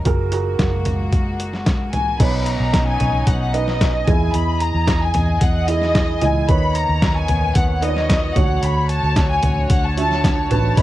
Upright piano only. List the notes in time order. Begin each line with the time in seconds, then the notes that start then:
0.05 F#4 G#4 A#4
0.31 F#4 G#4 A#4
2.19 B2 D#4 B4 C#5
3.53 D#4 B4 D#5
4.07 E3 E4 G#4 D#5
5.68 E4 G#4 D#5
6.22 E4 G#4 D#5
6.48 D#3 D#4 B4 C#5
7.81 D#4 B4 D5
7.90 D#5
8.35 D3 D4 F#4 C#5
9.96 D4 F#4 E5
10.50 D4 F#4 B4
10.77 B2 D#4 B4 C#5